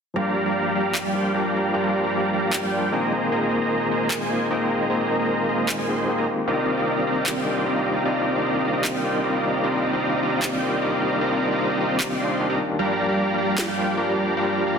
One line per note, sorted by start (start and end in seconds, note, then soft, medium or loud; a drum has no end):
0.14 1.11 F3 medium
0.14 1.12 G3 medium
0.14 0.43 G3 medium
0.14 1.12 A#3 medium
0.14 1.13 D4 medium
0.14 0.43 G4 medium
0.14 0.43 D5 medium
0.14 0.43 F5 medium
0.14 0.43 A#5 loud
0.18 1.13 F4 medium
0.46 0.73 G3 medium
0.46 0.73 G4 medium
0.46 0.73 D5 medium
0.46 0.73 F5 medium
0.46 0.73 A#5 medium
0.75 1.03 G3 medium
0.75 1.03 G4 medium
0.75 1.03 D5 medium
0.75 1.03 F5 medium
0.75 1.03 A#5 medium
0.95 clap medium
1.05 1.32 G3 medium
1.05 1.32 G4 medium
1.05 1.32 D5 medium
1.05 1.32 F5 medium
1.05 1.32 G5 loud
1.14 1.32 F3 medium
1.14 1.32 G3 medium
1.14 1.32 A#3 medium
1.14 1.32 D4 medium
1.14 1.33 F4 medium
1.33 1.71 F3 medium
1.33 1.71 G3 medium
1.33 1.72 G3 medium
1.33 1.72 A#3 medium
1.33 1.72 D4 medium
1.33 1.72 G4 medium
1.33 1.72 D5 medium
1.33 1.72 F5 medium
1.33 1.72 A#5 medium
1.72 2.69 F3 medium
1.72 2.70 G3 medium
1.72 2.01 G3 loud
1.72 2.70 A#3 medium
1.72 2.71 D4 medium
1.72 2.71 F4 medium
1.72 2.01 G4 medium
1.72 2.01 D5 medium
1.72 2.01 F5 medium
1.72 2.01 A#5 loud
2.03 2.31 G3 medium
2.03 2.31 G4 medium
2.03 2.31 D5 medium
2.03 2.31 F5 medium
2.03 2.31 A#5 medium
2.33 2.60 G3 medium
2.33 2.60 G4 medium
2.33 2.60 D5 medium
2.33 2.60 F5 medium
2.33 2.60 A#5 medium
2.53 clap medium
2.63 2.90 G3 medium
2.63 2.90 G4 medium
2.63 2.90 D5 medium
2.63 2.90 F5 medium
2.63 2.90 G5 medium
2.72 2.90 F3 medium
2.72 2.90 G3 medium
2.72 2.90 A#3 medium
2.72 2.90 D4 medium
2.72 2.91 F4 medium
2.91 3.29 D#3 medium
2.91 3.29 G#3 medium
2.91 3.30 A#3 medium
2.91 3.30 C4 medium
2.91 3.30 G#4 medium
2.91 3.29 C5 medium
2.91 3.29 D#5 medium
2.91 3.30 G5 medium
2.91 3.29 A#5 medium
3.30 4.27 D#3 medium
3.30 4.28 G#3 medium
3.30 4.28 A#3 medium
3.30 3.59 A#3 loud
3.30 4.29 C4 medium
3.30 4.29 F4 medium
3.30 3.59 G#4 medium
3.30 3.59 C5 medium
3.30 3.59 D#5 medium
3.30 3.59 A#5 loud
3.62 3.89 A#3 medium
3.62 3.89 G#4 medium
3.62 3.89 C5 medium
3.62 3.89 D#5 medium
3.62 3.89 A#5 medium
3.91 4.18 A#3 medium
3.91 4.18 G#4 medium
3.91 4.18 C5 medium
3.91 4.18 D#5 medium
3.91 4.18 A#5 medium
4.11 clap medium
4.21 4.48 A#3 medium
4.21 4.48 G#4 medium
4.21 4.48 C5 medium
4.21 4.48 D#5 medium
4.21 4.48 G#5 medium
4.29 4.47 D#3 medium
4.29 4.48 G#3 medium
4.29 4.48 A#3 medium
4.29 4.48 C4 medium
4.29 4.48 F4 medium
4.49 4.87 D#3 medium
4.49 4.87 G#3 medium
4.49 4.87 A#3 medium
4.49 4.88 C4 medium
4.49 4.87 G#4 medium
4.49 4.87 C5 medium
4.49 4.87 D#5 medium
4.49 4.88 G5 medium
4.49 4.87 A#5 medium
4.88 5.85 D#3 medium
4.88 5.86 G#3 medium
4.88 5.17 A#3 medium
4.88 5.86 A#3 medium
4.88 5.87 C4 medium
4.88 5.17 G#4 medium
4.88 5.17 C5 medium
4.88 5.17 D#5 medium
4.88 5.17 A#5 loud
4.92 5.87 F4 medium
5.19 5.47 A#3 medium
5.19 5.47 G#4 medium
5.19 5.47 C5 medium
5.19 5.47 D#5 medium
5.19 5.47 A#5 medium
5.49 5.76 A#3 medium
5.49 5.76 G#4 medium
5.49 5.76 C5 medium
5.49 5.76 D#5 medium
5.49 5.76 A#5 medium
5.69 clap medium
5.79 5.86 A#3 medium
5.79 5.86 G#4 medium
5.79 5.86 C5 medium
5.79 5.86 D#5 medium
5.79 5.86 G#5 loud
5.88 6.05 D#3 medium
5.88 6.06 G#3 medium
5.88 6.16 A#3 medium
5.88 6.06 A#3 medium
5.88 6.06 C4 medium
5.88 6.06 F4 medium
5.88 6.16 G#4 medium
5.88 6.16 C5 medium
5.88 6.16 D#5 medium
5.88 6.16 C6 medium
6.07 6.44 D#3 medium
6.07 6.45 G#3 medium
6.07 6.45 A#3 medium
6.07 6.46 C4 medium
6.07 6.46 G4 medium
6.18 6.27 A#3 medium
6.18 6.27 G#4 medium
6.18 6.27 C5 medium
6.18 6.27 D#5 medium
6.18 6.27 A#5 loud
6.46 7.43 D#3 medium
6.46 7.43 G3 medium
6.46 7.44 A#3 medium
6.46 6.75 C4 loud
6.46 7.45 D4 medium
6.46 6.75 G4 medium
6.46 6.75 D5 medium
6.46 6.75 D#5 medium
6.46 6.75 F5 medium
6.46 6.75 A#5 loud
6.50 7.45 F4 medium
6.77 7.05 C4 medium
6.77 7.04 G4 medium
6.77 7.05 D5 medium
6.77 7.05 D#5 medium
6.77 7.05 F5 medium
6.77 7.05 A#5 medium
7.07 7.34 C4 medium
7.07 7.34 G4 medium
7.07 7.34 D5 medium
7.07 7.34 D#5 medium
7.07 7.34 F5 medium
7.07 7.34 A#5 medium
7.26 clap medium
7.36 7.64 C4 medium
7.36 7.64 G4 medium
7.36 7.64 D5 medium
7.36 7.64 D#5 medium
7.36 7.64 F5 medium
7.36 7.64 G5 medium
7.45 7.63 D#3 medium
7.45 7.63 G3 medium
7.45 7.64 A#3 medium
7.45 7.64 D4 medium
7.45 7.64 F4 medium
7.65 8.02 D#3 medium
7.65 8.03 G3 medium
7.65 8.03 A#3 medium
7.65 8.03 C4 medium
7.65 8.03 G4 medium
7.65 8.04 G4 medium
7.65 8.03 D5 medium
7.65 8.03 D#5 medium
7.65 8.03 F5 medium
7.65 8.03 A#5 medium
8.04 9.01 D#3 medium
8.04 9.01 G3 medium
8.04 9.02 A#3 medium
8.04 8.33 C4 medium
8.04 9.02 D4 medium
8.04 9.03 F4 medium
8.04 8.33 G4 medium
8.04 8.33 D5 medium
8.04 8.33 D#5 medium
8.04 8.33 F5 medium
8.04 8.33 A#5 loud
8.35 8.62 C4 medium
8.35 8.62 G4 medium
8.35 8.62 D5 medium
8.35 8.62 D#5 medium
8.35 8.62 F5 medium
8.35 8.62 A#5 medium
8.65 8.92 C4 medium
8.65 8.92 G4 medium
8.65 8.92 D5 medium
8.65 8.92 D#5 medium
8.65 8.92 F5 medium
8.65 8.92 A#5 medium
8.84 clap medium
8.94 9.22 C4 medium
8.94 9.22 G4 medium
8.94 9.22 D5 medium
8.94 9.22 D#5 medium
8.94 9.22 F5 medium
8.94 9.22 G5 medium
9.03 9.21 D#3 medium
9.03 9.21 G3 medium
9.03 9.22 A#3 medium
9.03 9.22 D4 medium
9.03 9.22 F4 medium
9.23 9.60 D#3 medium
9.23 9.61 G3 medium
9.23 9.61 A#3 medium
9.23 9.61 C4 medium
9.23 9.61 G4 medium
9.23 9.62 G4 medium
9.23 9.61 D5 medium
9.23 9.61 D#5 medium
9.23 9.61 F5 medium
9.23 9.61 A#5 medium
9.61 10.59 D#3 medium
9.61 10.59 G3 medium
9.61 10.60 A#3 medium
9.61 9.91 C4 loud
9.61 10.60 D4 medium
9.61 9.91 G4 medium
9.61 9.91 D5 medium
9.61 9.91 D#5 medium
9.61 9.91 F5 medium
9.61 9.91 A#5 loud
9.65 10.61 F4 medium
9.93 10.20 C4 medium
9.93 10.20 G4 medium
9.93 10.20 D5 medium
9.93 10.20 D#5 medium
9.93 10.20 F5 medium
9.93 10.20 A#5 medium
10.23 10.50 C4 medium
10.23 10.50 G4 medium
10.23 10.50 D5 medium
10.23 10.50 D#5 medium
10.23 10.50 F5 medium
10.23 10.50 A#5 medium
10.42 clap medium
10.52 10.80 C4 medium
10.52 10.80 G4 medium
10.52 10.80 D5 medium
10.52 10.80 D#5 medium
10.52 10.80 F5 medium
10.52 10.80 G5 medium
10.61 10.79 D#3 medium
10.61 10.79 G3 medium
10.61 10.80 A#3 medium
10.61 10.80 D4 medium
10.61 10.80 F4 medium
10.81 11.18 D#3 medium
10.81 11.19 G3 medium
10.81 11.19 A#3 medium
10.81 11.19 C4 medium
10.81 11.19 G4 medium
10.81 11.20 G4 medium
10.81 11.19 D5 medium
10.81 11.19 D#5 medium
10.81 11.19 F5 medium
10.81 11.19 A#5 medium
11.19 12.17 D#3 medium
11.19 12.17 G3 medium
11.19 12.18 A#3 medium
11.19 11.49 C4 medium
11.19 12.18 D4 medium
11.19 12.19 F4 medium
11.19 11.49 G4 medium
11.19 11.49 D5 medium
11.19 11.49 D#5 medium
11.19 11.49 F5 medium
11.19 11.49 A#5 loud
11.51 11.78 C4 medium
11.51 11.78 G4 medium
11.51 11.78 D5 medium
11.51 11.78 D#5 medium
11.51 11.78 F5 medium
11.51 11.78 A#5 loud
11.80 12.08 C4 medium
11.80 12.08 G4 medium
11.80 12.08 D5 medium
11.80 12.08 D#5 medium
11.80 12.08 F5 medium
11.80 12.08 A#5 medium
12.00 clap medium
12.10 12.18 C4 medium
12.10 12.18 G4 medium
12.10 12.18 D5 medium
12.10 12.18 D#5 medium
12.10 12.18 F5 medium
12.10 12.18 G5 medium
12.19 12.37 D#3 medium
12.19 12.37 G3 medium
12.19 12.37 A#3 medium
12.19 12.47 C4 medium
12.19 12.38 D4 medium
12.19 12.38 F4 medium
12.19 12.47 G4 medium
12.19 12.47 D5 medium
12.19 12.47 D#5 medium
12.19 12.47 F5 medium
12.19 12.47 C6 medium
12.39 12.76 D#3 medium
12.39 12.77 G3 medium
12.39 12.77 A#3 medium
12.39 12.77 D4 medium
12.39 12.78 G4 medium
12.50 12.58 C4 medium
12.50 12.58 G4 medium
12.50 12.58 D5 medium
12.50 12.58 D#5 medium
12.50 12.58 F5 medium
12.50 12.58 A#5 loud
12.77 13.75 F3 medium
12.77 13.75 G3 medium
12.77 13.06 G3 loud
12.77 13.76 A#3 medium
12.77 13.76 D4 medium
12.77 13.06 G4 medium
12.77 13.06 D5 medium
12.77 13.06 F5 medium
12.77 13.06 A#5 loud
12.81 13.77 F4 medium
13.09 13.36 G3 medium
13.09 13.36 G4 medium
13.09 13.36 D5 medium
13.09 13.36 F5 medium
13.09 13.36 A#5 medium
13.38 13.66 G3 medium
13.38 13.66 G4 medium
13.38 13.66 D5 medium
13.38 13.66 F5 medium
13.38 13.66 A#5 medium
13.58 snare loud
13.58 clap medium
13.68 13.95 G3 medium
13.68 13.95 G4 medium
13.68 13.95 D5 medium
13.68 13.95 F5 medium
13.68 13.95 G5 medium
13.77 13.95 F3 medium
13.77 13.95 G3 medium
13.77 13.95 A#3 medium
13.77 13.96 D4 medium
13.77 13.96 F4 medium
13.97 14.34 F3 medium
13.97 14.34 G3 medium
13.97 14.35 G3 medium
13.97 14.35 A#3 medium
13.97 14.35 D4 medium
13.97 14.35 G4 medium
13.97 14.35 D5 medium
13.97 14.35 F5 medium
13.97 14.35 A#5 medium
14.35 14.79 F3 medium
14.35 14.79 G3 medium
14.35 14.64 G3 loud
14.35 14.79 A#3 medium
14.35 14.79 D4 medium
14.35 14.79 F4 medium
14.35 14.64 G4 medium
14.35 14.64 D5 medium
14.35 14.64 F5 medium
14.35 14.64 A#5 loud
14.67 14.79 G3 medium
14.67 14.79 G4 medium
14.67 14.79 D5 medium
14.67 14.79 F5 medium
14.67 14.79 A#5 medium